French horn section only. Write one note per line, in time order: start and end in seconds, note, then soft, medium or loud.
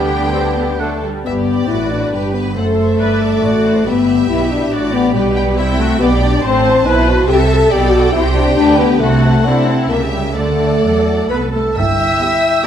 0.00 0.78 G3 soft
0.00 0.80 B4 soft
0.79 0.90 F#3 soft
0.79 1.03 A4 soft
1.24 1.65 B3 medium
1.67 1.90 E4 medium
1.90 2.34 D4 medium
2.34 2.56 B3 medium
2.56 3.83 A3 medium
3.86 4.28 B3 medium
4.28 4.49 E4 medium
4.51 4.93 D4 medium
4.92 5.14 B3 medium
5.13 5.77 G3 medium
5.77 5.99 A3 medium
5.99 6.09 B3 medium
6.21 6.42 D4 medium
6.43 6.85 C4 loud
6.85 7.07 E4 medium
7.08 7.29 F#4 medium
7.28 7.38 G4 loud
7.48 7.70 A4 loud
7.71 7.93 G4 loud
7.91 8.14 F#4 loud
8.12 8.22 E4 medium
8.33 8.55 D4 medium
8.56 8.78 D4 loud
8.79 9.01 B3 medium
8.99 9.45 A3 medium
9.45 9.68 D4 medium
9.68 9.91 C4 medium
9.89 10.00 A#3 medium
10.12 10.23 G3 medium
10.37 11.28 A3 medium
11.32 11.42 B3 medium
11.58 11.79 A3 soft
11.80 12.67 E4 medium